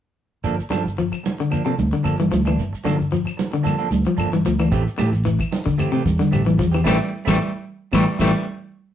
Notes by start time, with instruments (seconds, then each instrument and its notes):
0.44 fingered electric bass G1, clean electric guitar F3 A#3 D4 A4, shekere
0.58 muted clean electric guitar stroke, shekere
0.70 fingered electric bass G2, clean electric guitar F3 D4 A4, muted clean electric guitar stroke, high conga, claves, shekere
0.85 fingered electric bass G1, muted clean electric guitar stroke, shekere
0.98 clean electric guitar F3, shekere
1.12 muted clean electric guitar stroke, claves, shekere
1.23 muted clean electric guitar stroke, high conga, shekere
1.38 clean electric guitar D3, muted clean electric guitar stroke, shekere
1.50 clean electric guitar F3 A#3 D4, muted clean electric guitar stroke, claves, shekere
1.65 clean electric guitar C3 F3 A#3 D4 A4, shekere
1.77 fingered electric bass D2, muted clean electric guitar stroke, high conga, shekere
1.93 clean electric guitar D3, shekere
2.03 fingered electric bass G1, clean electric guitar F3 A#3 D4 A4, claves, shekere
2.18 clean electric guitar E3, muted clean electric guitar stroke, high conga, shekere
2.31 fingered electric bass D2, clean electric guitar F3, muted clean electric guitar stroke, high conga, shekere
2.45 clean electric guitar E3 A#3 D4, muted clean electric guitar stroke, claves, shekere
2.58 fingered electric bass G1, shekere
2.73 muted clean electric guitar stroke, shekere
2.84 fingered electric bass G2, clean electric guitar D3 F3 A#3 D4 A4, high conga, claves, shekere
2.99 fingered electric bass G1, muted clean electric guitar stroke, shekere
3.12 clean electric guitar F3, shekere
3.25 muted clean electric guitar stroke, claves, shekere
3.37 muted clean electric guitar stroke, high conga, shekere
3.51 clean electric guitar D3, muted clean electric guitar stroke, shekere
3.63 clean electric guitar F3 A#3 D4 A4, high conga, claves, shekere
3.78 clean electric guitar F3 A#3 D4 A4, shekere
3.90 fingered electric bass D2, muted clean electric guitar stroke, high conga, shekere
4.05 clean electric guitar F3, shekere
4.17 fingered electric bass G1, clean electric guitar F3 A#3 D4 A4, claves, shekere
4.33 clean electric guitar E3, muted clean electric guitar stroke, high conga, shekere
4.45 fingered electric bass D2, clean electric guitar F3, muted clean electric guitar stroke, shekere
4.59 clean electric guitar E3 A#3 D4, muted clean electric guitar stroke, claves, shekere
4.71 fingered electric bass A1, clean electric guitar E3 A3 C4 G4, kick, closed hi-hat, shekere
4.86 muted clean electric guitar stroke, shekere
4.98 fingered electric bass A2, clean electric guitar E3 A3 G4, muted clean electric guitar stroke, closed hi-hat, high conga, claves, shekere
5.12 fingered electric bass A1, muted clean electric guitar stroke, closed hi-hat, shekere
5.25 clean electric guitar E3, closed hi-hat, shekere
5.39 muted clean electric guitar stroke, kick, claves, shekere
5.51 muted clean electric guitar stroke, open hi-hat, high conga, shekere
5.65 clean electric guitar D3, muted clean electric guitar stroke, kick, shekere
5.78 clean electric guitar E3 A3 C4 G4, closed hi-hat, claves, shekere
5.92 clean electric guitar C3 E3 A3 C4 G4, shekere
6.06 fingered electric bass E2, kick, closed hi-hat, high conga, shekere
6.19 clean electric guitar D3, snare, closed hi-hat, high conga, shekere
6.31 fingered electric bass A1, clean electric guitar E3 A3 C4 G4, closed hi-hat, claves, shekere
6.45 clean electric guitar E3, muted clean electric guitar stroke, high conga, shekere
6.58 fingered electric bass E2, clean electric guitar F3, muted clean electric guitar stroke, kick, closed hi-hat, shekere
6.72 clean electric guitar E3 C4 G4, claves
6.76 shekere
6.84 fingered electric bass A1, clean electric guitar E3 G3 A3 C4 E4, kick, snare, high conga, claves, shekere
7.25 fingered electric bass A1, clean electric guitar G3 A3 C4 E4, kick, snare, high conga, claves, shekere
7.29 clean electric guitar E3
7.92 fingered electric bass A1, clean electric guitar E3 G3 A3 C4 E4, kick, snare, high conga, claves, shekere
8.19 fingered electric bass A1, clean electric guitar E3 G3 A3 C4 E4, kick, snare, high conga, claves, shekere